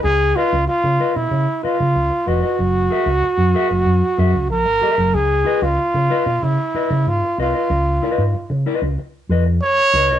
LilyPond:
<<
  \new Staff \with { instrumentName = "Clean electric guitar" } { \time 4/4 \key des \mixolydian \tempo 4 = 94 r8 <f' ces'' ees''>16 r8. <f' ces'' ees''>16 r8. <f' ces'' ees''>16 r8. <f' ces'' ees''>16 <f' ces'' ees''>16 | r8 <aes' bes' fes''>16 r8. <aes' bes' fes''>16 r8. <aes' bes' fes''>16 r8. <aes' bes' fes''>16 r16 | r8 <f' ces'' ees''>16 r8. <f' ces'' ees''>16 r8. <f' ces'' ees''>16 r8. <f' ces'' ees''>16 <f' ces'' ees''>16 | r8 <f' ces'' ees''>16 r8. <f' ces'' ees''>16 r8. <f' ces'' ees''>16 r8. <f' ces'' ees''>16 <f' ces'' ees''>16 | }
  \new Staff \with { instrumentName = "Trumpet" } { \time 4/4 \key des \mixolydian aes'8 f'8 f'8. fes'8. f'4 ges'8~ | ges'2. bes'4 | aes'8. f'4~ f'16 fes'4 f'8 f'8~ | f'4. r4. des''4 | }
  \new Staff \with { instrumentName = "Fingered electric bass" } { \clef bass \time 4/4 \key des \mixolydian des,8 r16 des,16 r16 des16 r16 ces16 des16 r8 des16 des,16 r16 f,,16 r16 | ges,,8 r16 des,16 r16 ges,16 r16 ges,,16 ges,16 r16 ges,16 des,16 bes,,16 aes,,16 r16 ges,,16 | des,8 r16 des,16 r16 des16 r16 ces16 des16 r8 des16 aes,16 r16 c,16 r16 | des,8 r16 aes,16 r16 des16 r16 des,16 r8 f,8 r8 des,16 c,16 | }
>>